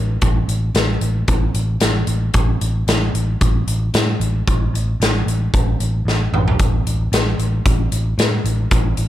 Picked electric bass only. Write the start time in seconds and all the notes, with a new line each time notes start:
Already playing: A1
0.22 A1
0.48 A1
0.75 A1
1.01 A1
1.28 A1
1.54 A1
1.81 A1
2.07 A1
2.34 A1
2.61 A1
2.87 A1
3.14 A1
3.41 A1
3.67 A1
3.94 A2
4.20 A1
4.48 A1
4.73 A1
5.00 A1
5.26 A1
5.54 A1
5.80 A1
6.05 A1
6.33 A1
6.60 A1
6.85 A1
7.12 A1
7.38 A1
7.66 A1
7.92 A1
8.18 A2
8.44 A1
8.72 A1
8.98 A1